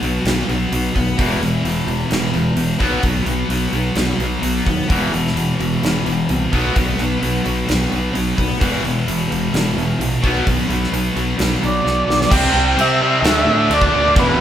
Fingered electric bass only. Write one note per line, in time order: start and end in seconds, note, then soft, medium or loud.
0.01 0.18 B1 medium
0.25 0.41 B1 medium
0.48 0.65 B1 medium
0.71 0.88 B1 medium
0.96 1.12 B1 medium
1.19 1.35 E1 medium
1.41 1.57 E1 medium
1.64 1.81 E1 medium
1.87 2.04 E1 medium
2.11 2.27 E1 medium
2.34 2.50 E1 medium
2.56 2.73 E1 medium
2.81 2.97 B1 medium
3.03 3.20 B1 medium
3.25 3.42 B1 medium
3.49 3.66 B1 medium
3.72 3.89 B1 medium
3.95 4.12 B1 medium
4.18 4.35 B1 medium
4.42 4.59 B1 medium
4.67 4.83 D#2 medium
4.90 5.06 E1 medium
5.13 5.29 E1 medium
5.35 5.52 E1 medium
5.59 5.75 E1 medium
5.83 5.99 E1 medium
6.06 6.22 E1 medium
6.29 6.45 C2 medium
6.53 6.69 B1 medium
6.76 6.92 B1 medium
6.99 7.15 B1 medium
7.22 7.38 B1 medium
7.46 7.62 B1 medium
7.69 7.85 B1 medium
7.93 8.09 B1 medium
8.15 8.31 B1 medium
8.38 8.54 B1 medium
8.61 8.77 E1 medium
8.84 9.00 E1 medium
9.07 9.24 E1 medium
9.31 9.47 E1 medium
9.54 9.70 E1 medium
9.76 9.92 E1 medium
9.99 10.15 A#1 medium
10.24 10.40 B1 medium
10.47 10.63 B1 medium
10.68 10.85 B1 medium
10.92 11.08 B1 medium
11.16 11.32 B1 medium
11.38 11.55 B1 medium
11.63 11.79 B1 medium
11.85 12.01 B1 medium
12.08 12.24 B1 medium
12.32 12.52 C2 loud
12.53 12.75 C2 medium
12.75 13.21 C3 medium
13.22 13.45 D2 medium
13.46 13.69 A2 medium
13.70 13.92 D2 loud
13.94 14.15 D2 medium
14.16 14.38 E1 loud